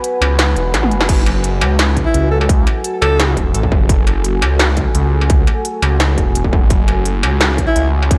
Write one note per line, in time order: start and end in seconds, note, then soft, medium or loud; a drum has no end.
0.00 1.05 F#4 medium
0.00 1.07 B4 medium
0.00 1.05 G#5 medium
0.00 closed hi-hat medium
0.21 0.55 C#2 loud
0.21 closed hi-hat soft
0.21 struck metal medium
0.39 snare loud
0.39 closed hi-hat medium
0.56 0.75 E1 medium
0.56 closed hi-hat soft
0.74 0.93 A1 loud
0.74 snare medium
0.74 closed hi-hat medium
0.83 high tom medium
0.91 1.07 F#1 loud
0.91 closed hi-hat soft
1.00 snare medium
1.09 1.63 F#1 loud
1.09 8.18 F#4 medium
1.09 6.69 A4 medium
1.09 8.18 G#5 medium
1.09 kick loud
1.09 closed hi-hat medium
1.09 crash loud
1.26 closed hi-hat soft
1.26 struck metal soft
1.44 closed hi-hat medium
1.61 2.05 C#2 loud
1.61 closed hi-hat soft
1.61 struck metal medium
1.79 snare loud
1.79 closed hi-hat medium
1.96 kick medium
1.96 closed hi-hat soft
2.05 2.27 E4 medium
2.14 2.66 C#2 loud
2.14 closed hi-hat medium
2.31 2.37 A4 medium
2.40 2.46 A4 medium
2.40 struck metal soft
2.49 kick loud
2.49 closed hi-hat medium
2.67 closed hi-hat soft
2.67 struck metal soft
2.84 closed hi-hat medium
3.01 3.36 C#2 loud
3.01 3.37 A4 loud
3.01 closed hi-hat soft
3.01 struck metal medium
3.20 snare loud
3.20 closed hi-hat medium
3.37 3.55 E1 medium
3.37 kick medium
3.37 closed hi-hat soft
3.54 3.73 A1 loud
3.54 closed hi-hat medium
3.63 kick medium
3.72 3.88 F#1 loud
3.72 kick loud
3.89 4.43 F#1 loud
3.89 kick loud
3.89 closed hi-hat medium
4.07 closed hi-hat soft
4.07 struck metal soft
4.25 closed hi-hat medium
4.42 4.85 C#2 loud
4.42 closed hi-hat soft
4.42 struck metal medium
4.59 snare loud
4.59 closed hi-hat medium
4.77 kick medium
4.77 closed hi-hat soft
4.95 5.46 C#2 loud
4.95 closed hi-hat medium
5.21 struck metal soft
5.30 kick loud
5.30 closed hi-hat medium
5.47 closed hi-hat soft
5.47 struck metal soft
5.65 closed hi-hat medium
5.82 6.17 C#2 loud
5.82 closed hi-hat soft
5.82 struck metal medium
6.00 snare loud
6.00 closed hi-hat medium
6.18 6.64 E1 medium
6.18 kick medium
6.18 closed hi-hat soft
6.35 closed hi-hat medium
6.44 kick medium
6.53 kick loud
6.62 6.70 A1 loud
6.70 7.25 F#1 loud
6.70 8.18 C#5 medium
6.70 kick loud
6.70 closed hi-hat medium
6.88 closed hi-hat soft
6.88 struck metal soft
7.06 closed hi-hat medium
7.23 7.66 C#2 loud
7.23 closed hi-hat soft
7.23 struck metal medium
7.41 snare loud
7.41 closed hi-hat medium
7.58 kick medium
7.58 closed hi-hat soft
7.67 7.88 E4 loud
7.75 8.18 C#2 loud
7.75 closed hi-hat medium
8.03 struck metal soft
8.11 kick loud
8.11 closed hi-hat medium